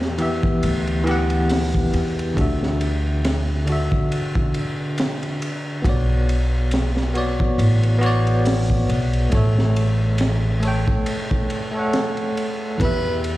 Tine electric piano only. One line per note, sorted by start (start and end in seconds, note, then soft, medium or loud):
0.00 0.13 E3 medium
0.00 0.15 B3 medium
0.00 0.16 G4 medium
0.00 0.17 E5 medium
0.18 1.01 E3 medium
0.18 1.02 B3 medium
0.18 1.02 G4 medium
0.18 1.03 E5 medium
1.03 2.31 E3 loud
1.03 2.32 B3 medium
1.08 2.33 G4 medium
1.08 2.35 F#5 loud
2.34 3.61 D3 medium
2.34 3.62 D4 medium
2.39 3.64 F#4 medium
2.39 3.65 E5 medium
3.65 5.79 D3 medium
3.65 5.80 D4 medium
3.70 5.81 F#4 medium
3.70 5.83 E5 medium
5.82 7.09 B3 medium
5.82 7.10 F#4 medium
5.87 7.12 C#5 medium
5.87 7.13 D5 medium
7.14 7.97 B3 medium
7.14 7.98 F#4 medium
7.14 7.98 C#5 medium
7.14 7.99 D5 medium
7.99 9.26 B3 medium
7.99 9.28 F#4 medium
8.04 9.29 C#5 medium
8.04 9.30 D5 loud
9.30 10.57 A3 medium
9.30 10.58 A4 medium
9.35 10.60 C#5 medium
9.35 10.61 E5 medium
10.60 11.68 A3 medium
10.60 11.69 A4 medium
10.65 11.71 C#5 medium
10.65 11.72 G5 medium
11.72 12.75 A3 medium
11.72 12.76 A4 medium
11.77 12.77 C#5 medium
11.77 12.78 F#5 medium
12.78 13.37 E3 medium
12.78 13.37 B3 medium
12.83 13.37 G4 medium
12.83 13.37 E5 medium